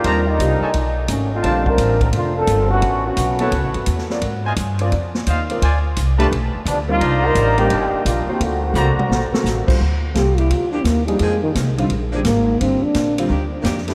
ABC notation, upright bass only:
X:1
M:4/4
L:1/8
Q:"Swing" 1/4=172
K:Gm
V:1 name="Upright bass" clef=bass
E,,2 C,, z =B,,,2 ^G,,,2 | B,,,2 A,,,2 F,,,2 G,,,2 | A,,,2 =B,,,2 (3^C,, A,,, G,,, =E,,2 | _A,,2 G,,2 F,,2 E,,2 |
D,,2 C,,2 =B,,, z D,,2 | C,,2 A,,,2 G,,, z B,,, z | D,,2 C,, z B,,, z A,,, z | D,,2 C,,2 D,,2 E,,2 |
F,,2 C,,2 B,,,2 _A,,,2 | G,,, z B,,,2 D,,2 F,,2 |]